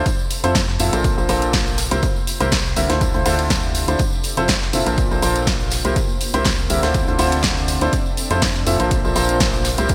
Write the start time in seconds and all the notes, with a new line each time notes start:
0.06 kick, closed hi-hat, tambourine
0.19 tambourine
0.30 closed hi-hat, open hi-hat, tambourine
0.44 F2 F3 C4 E4 F4 A4 C5, closed hi-hat, tambourine
0.55 kick, snare, closed hi-hat, tambourine
0.68 snare
0.79 F2 A#2 C4 E4 F4 A4 E5, open hi-hat, tambourine
0.93 A#1 A#2 D4 F4 A4 A#4 C5, closed hi-hat, tambourine
1.04 kick, closed hi-hat, tambourine
1.18 A#1 A#2 D4 F4 A4 A#4 C5, tambourine
1.29 A#1 A#2 D4 F4 A4 A#4 C5, closed hi-hat, open hi-hat, tambourine
1.42 closed hi-hat, tambourine
1.53 kick, snare, closed hi-hat, tambourine
1.67 closed hi-hat, tambourine
1.78 C4, snare, closed hi-hat, open hi-hat, tambourine
1.87 G4, tambourine
1.91 C2 C3 C4 E4 G4 A#4 C5, closed hi-hat
2.03 kick, closed hi-hat, tambourine
2.16 tambourine
2.27 closed hi-hat, open hi-hat, tambourine
2.40 C2 C3 C4 E4 G4 A#4 C5, closed hi-hat, tambourine
2.52 kick, snare, closed hi-hat, tambourine
2.66 tambourine
2.76 C2 D3 C4 E4 G4 A#4 E5, closed hi-hat, open hi-hat, tambourine
2.89 D2 D3 D4 E4 F4 A4 C5, snare, closed hi-hat, tambourine
3.01 kick, closed hi-hat, tambourine
3.14 D2 D3 D4 E4 F4 A4 C5, closed hi-hat, tambourine
3.26 D2 D3 D4 E4 F4 A4 C5, open hi-hat, tambourine
3.39 closed hi-hat, tambourine
3.50 kick, snare, closed hi-hat, tambourine
3.63 tambourine
3.75 closed hi-hat, open hi-hat, tambourine
3.88 D2 D4 E4 F4 A4 C5, closed hi-hat, tambourine
3.99 kick, closed hi-hat, tambourine
4.12 tambourine
4.24 closed hi-hat, open hi-hat, tambourine
4.37 F1 F3 C4 E4 F4 A4 C5, closed hi-hat, tambourine
4.48 kick, snare, closed hi-hat, tambourine
4.62 snare
4.73 F1 A#2 C4 E4 F4 A4 E5, closed hi-hat, open hi-hat, tambourine
4.86 A#1 A#2 D4 F4 A4 A#4 C5, closed hi-hat, tambourine
4.98 kick, closed hi-hat, tambourine
5.11 A#1 A#2 D4 F4 A4 A#4 C5, tambourine
5.22 A#1 A#2 D4 F4 A4 A#4 C5, closed hi-hat, open hi-hat, tambourine
5.36 closed hi-hat, tambourine
5.47 kick, snare, closed hi-hat, tambourine
5.60 closed hi-hat, tambourine
5.70 C4, snare, closed hi-hat, open hi-hat, tambourine
5.85 C2 C3 C4 E4 G4 A#4 C5, closed hi-hat, tambourine
5.96 kick, closed hi-hat, tambourine
6.09 tambourine
6.21 closed hi-hat, open hi-hat, tambourine
6.34 C2 C3 C4 E4 G4 A#4 C5, closed hi-hat, tambourine
6.45 kick, snare, closed hi-hat, tambourine
6.58 tambourine
6.70 C2 D3 C4 E4 G4 A#4 E5, closed hi-hat, open hi-hat, tambourine
6.83 D2 D3 D4 E4 F4 A4 C5, snare, closed hi-hat, tambourine
6.94 kick, closed hi-hat, tambourine
7.07 D2 D3 D4 E4 F4 A4 C5, closed hi-hat, tambourine
7.19 D2 D3 D4 E4 F4 A4 C5, open hi-hat, tambourine
7.32 closed hi-hat, tambourine
7.43 kick, snare, closed hi-hat, tambourine
7.57 tambourine
7.68 closed hi-hat, open hi-hat, tambourine
7.81 D2 D4 E4 F4 A4 C5, closed hi-hat, tambourine
7.93 kick, closed hi-hat, tambourine
8.06 tambourine
8.17 closed hi-hat, open hi-hat, tambourine
8.30 F2 F3 C4 E4 F4 A4 C5, closed hi-hat, tambourine
8.42 kick, snare, closed hi-hat, tambourine
8.55 snare
8.66 F2 A#2 C4 E4 F4 A4 E5, closed hi-hat, open hi-hat, tambourine
8.80 A#1 A#2 D4 F4 A4 A#4 C5, closed hi-hat, tambourine
8.91 kick, closed hi-hat, tambourine
9.04 A#1 A#2 D4 F4 A4 A#4 C5, tambourine
9.16 A#1 A#2 D4 F4 A4 A#4 C5, closed hi-hat, open hi-hat, tambourine
9.29 closed hi-hat, tambourine
9.40 kick, snare, closed hi-hat, tambourine
9.53 closed hi-hat, tambourine
9.65 snare, closed hi-hat, open hi-hat, tambourine
9.78 C2 C3 C4 E4 G4 A#4 C5, closed hi-hat, tambourine
9.89 kick, closed hi-hat, tambourine